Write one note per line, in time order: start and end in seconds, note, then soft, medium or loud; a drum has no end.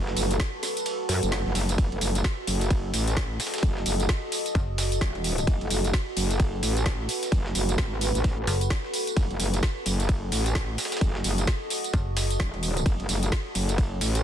0.00 0.15 F#1 medium
0.00 14.23 F#4 medium
0.00 14.23 A4 medium
0.00 1.77 B4 medium
0.07 snare medium
0.16 0.38 F#1 loud
0.16 open hi-hat loud
0.16 ride medium
0.16 tambourine medium
0.31 closed hi-hat medium
0.31 tambourine soft
0.40 kick loud
0.40 snare loud
0.40 closed hi-hat medium
0.40 ride medium
0.63 snare soft
0.63 open hi-hat loud
0.63 ride medium
0.63 tambourine medium
0.77 closed hi-hat medium
0.77 tambourine soft
0.86 closed hi-hat medium
0.86 ride medium
0.86 tambourine soft
1.09 1.21 F#2 medium
1.09 open hi-hat loud
1.09 ride medium
1.09 tambourine medium
1.23 1.44 F#1 loud
1.23 closed hi-hat medium
1.23 tambourine soft
1.32 snare loud
1.32 closed hi-hat medium
1.32 ride loud
1.32 tambourine soft
1.46 1.54 F#1 medium
1.46 snare soft
1.55 1.77 F#1 loud
1.55 snare loud
1.55 open hi-hat loud
1.55 ride medium
1.55 tambourine medium
1.69 closed hi-hat medium
1.69 tambourine soft
1.78 1.90 F#1 loud
1.78 5.46 D#5 medium
1.78 kick loud
1.78 closed hi-hat medium
1.78 ride medium
1.78 tambourine soft
1.92 2.00 F#1 medium
1.92 ride soft
2.01 2.23 F#1 loud
2.01 snare soft
2.01 open hi-hat loud
2.01 ride medium
2.01 tambourine medium
2.15 closed hi-hat medium
2.15 tambourine soft
2.24 kick loud
2.24 snare loud
2.24 closed hi-hat medium
2.24 ride medium
2.47 2.92 F#1 loud
2.47 open hi-hat loud
2.47 ride medium
2.47 tambourine medium
2.61 closed hi-hat medium
2.61 ride soft
2.61 tambourine soft
2.70 kick loud
2.70 closed hi-hat medium
2.70 ride medium
2.94 3.38 A1 medium
2.94 snare medium
2.94 open hi-hat loud
2.94 ride medium
2.94 tambourine medium
3.08 closed hi-hat medium
3.08 tambourine soft
3.17 kick loud
3.17 snare loud
3.17 closed hi-hat medium
3.17 ride loud
3.40 snare medium
3.40 open hi-hat loud
3.40 ride medium
3.40 tambourine medium
3.47 snare medium
3.47 ride medium
3.54 snare medium
3.54 closed hi-hat medium
3.54 ride medium
3.54 tambourine soft
3.58 snare medium
3.58 ride medium
3.63 3.84 F#1 medium
3.63 kick loud
3.63 closed hi-hat medium
3.63 ride medium
3.77 snare medium
3.86 4.07 F#1 loud
3.86 open hi-hat loud
3.86 ride medium
3.86 tambourine medium
4.00 closed hi-hat medium
4.00 tambourine soft
4.09 kick loud
4.09 snare loud
4.09 closed hi-hat medium
4.09 ride medium
4.09 tambourine soft
4.32 open hi-hat loud
4.32 ride medium
4.32 tambourine medium
4.46 closed hi-hat medium
4.46 tambourine soft
4.55 5.00 F#1 medium
4.55 kick loud
4.55 snare soft
4.55 closed hi-hat medium
4.55 ride medium
4.55 tambourine soft
4.78 snare loud
4.78 open hi-hat loud
4.78 ride medium
4.78 tambourine medium
4.92 closed hi-hat medium
4.92 tambourine soft
5.01 5.46 E1 loud
5.01 kick loud
5.01 snare loud
5.01 closed hi-hat medium
5.01 ride medium
5.01 tambourine soft
5.15 ride soft
5.24 open hi-hat medium
5.24 open hi-hat loud
5.24 tambourine medium
5.38 closed hi-hat medium
5.38 tambourine soft
5.47 5.59 F#1 medium
5.47 9.16 B4 medium
5.47 kick loud
5.47 closed hi-hat medium
5.47 ride medium
5.47 tambourine soft
5.61 5.69 F#1 loud
5.61 ride soft
5.70 5.92 F#1 loud
5.70 snare soft
5.70 open hi-hat loud
5.70 ride medium
5.70 tambourine medium
5.84 closed hi-hat medium
5.84 tambourine soft
5.93 kick loud
5.93 snare loud
5.93 closed hi-hat medium
5.93 ride medium
6.17 6.61 F#1 loud
6.17 open hi-hat loud
6.17 ride medium
6.17 tambourine medium
6.30 closed hi-hat medium
6.30 ride soft
6.30 tambourine soft
6.40 kick loud
6.40 closed hi-hat medium
6.40 ride medium
6.63 7.07 A1 loud
6.63 snare medium
6.63 open hi-hat loud
6.63 ride medium
6.63 tambourine medium
6.77 closed hi-hat medium
6.77 tambourine soft
6.86 kick loud
6.86 snare loud
6.86 closed hi-hat medium
6.86 ride loud
7.09 open hi-hat loud
7.09 ride medium
7.09 tambourine medium
7.23 snare soft
7.23 closed hi-hat medium
7.23 tambourine soft
7.32 7.54 F#1 medium
7.32 kick loud
7.32 closed hi-hat medium
7.32 ride medium
7.46 snare medium
7.55 7.77 F#1 loud
7.55 open hi-hat loud
7.55 ride medium
7.55 tambourine medium
7.69 closed hi-hat medium
7.69 tambourine soft
7.78 8.13 G#1 loud
7.78 kick loud
7.78 snare loud
7.78 closed hi-hat medium
7.78 ride medium
7.78 tambourine soft
8.01 open hi-hat loud
8.01 ride medium
8.01 tambourine medium
8.15 8.46 A1 loud
8.15 closed hi-hat medium
8.15 tambourine soft
8.24 kick loud
8.24 snare loud
8.24 closed hi-hat medium
8.24 ride medium
8.24 tambourine soft
8.47 8.69 F#1 loud
8.47 snare loud
8.47 open hi-hat loud
8.47 ride medium
8.47 tambourine medium
8.61 closed hi-hat medium
8.61 tambourine soft
8.70 kick loud
8.70 snare loud
8.70 closed hi-hat medium
8.70 ride medium
8.70 tambourine soft
8.84 snare soft
8.94 open hi-hat loud
8.94 open hi-hat medium
8.94 tambourine medium
9.07 closed hi-hat medium
9.07 tambourine soft
9.17 9.28 F#1 medium
9.17 12.85 D#5 medium
9.17 kick loud
9.17 closed hi-hat soft
9.17 ride medium
9.17 tambourine soft
9.30 9.38 F#1 loud
9.30 ride soft
9.40 9.61 F#1 medium
9.40 snare soft
9.40 open hi-hat loud
9.40 ride medium
9.40 tambourine medium
9.54 closed hi-hat medium
9.54 tambourine soft
9.63 kick loud
9.63 snare loud
9.63 closed hi-hat medium
9.63 ride medium
9.86 10.31 F#1 loud
9.86 open hi-hat loud
9.86 ride medium
9.86 tambourine medium
10.00 closed hi-hat medium
10.00 ride soft
10.00 tambourine soft
10.09 kick loud
10.09 closed hi-hat soft
10.09 ride medium
10.32 10.77 A1 loud
10.32 snare medium
10.32 open hi-hat loud
10.32 ride medium
10.32 tambourine medium
10.46 closed hi-hat medium
10.46 tambourine soft
10.55 kick loud
10.55 snare loud
10.55 closed hi-hat medium
10.55 ride loud
10.78 snare medium
10.78 open hi-hat loud
10.78 ride medium
10.78 tambourine medium
10.85 snare medium
10.85 ride medium
10.92 snare medium
10.92 closed hi-hat medium
10.92 ride medium
10.92 tambourine soft
10.97 snare medium
10.97 ride medium
11.01 11.23 F#1 medium
11.01 kick loud
11.01 closed hi-hat soft
11.01 ride medium
11.15 snare medium
11.24 11.46 F#1 loud
11.24 open hi-hat loud
11.24 ride medium
11.24 tambourine medium
11.38 closed hi-hat medium
11.38 tambourine soft
11.47 kick loud
11.47 snare loud
11.47 closed hi-hat medium
11.47 ride medium
11.70 open hi-hat loud
11.70 ride medium
11.70 tambourine medium
11.84 closed hi-hat medium
11.84 tambourine soft
11.93 12.38 F#1 medium
11.93 kick loud
11.93 snare soft
11.93 closed hi-hat medium
11.93 ride medium
11.93 tambourine soft
12.17 snare loud
12.17 open hi-hat loud
12.17 ride medium
12.17 tambourine medium
12.31 closed hi-hat medium
12.31 tambourine soft
12.40 12.84 E1 loud
12.40 kick loud
12.40 snare loud
12.40 closed hi-hat medium
12.40 ride medium
12.40 tambourine soft
12.54 ride soft
12.63 open hi-hat loud
12.63 open hi-hat medium
12.63 tambourine medium
12.77 closed hi-hat medium
12.77 tambourine soft
12.86 12.98 F#1 medium
12.86 14.23 C#5 medium
12.86 kick loud
12.86 closed hi-hat medium
12.86 ride medium
12.86 tambourine soft
13.00 13.07 F#1 loud
13.00 ride soft
13.09 13.31 F#1 loud
13.09 snare soft
13.09 open hi-hat loud
13.09 ride medium
13.09 tambourine medium
13.23 closed hi-hat medium
13.23 tambourine soft
13.32 kick loud
13.32 snare loud
13.32 closed hi-hat medium
13.32 ride medium
13.55 14.00 F#1 loud
13.55 open hi-hat loud
13.55 ride medium
13.55 tambourine medium
13.69 closed hi-hat medium
13.69 ride soft
13.69 tambourine soft
13.78 kick loud
13.78 closed hi-hat medium
13.78 ride medium
13.78 tambourine soft
14.01 14.23 A1 loud
14.01 snare medium
14.01 open hi-hat loud
14.01 ride medium
14.01 tambourine medium
14.15 closed hi-hat medium
14.15 tambourine soft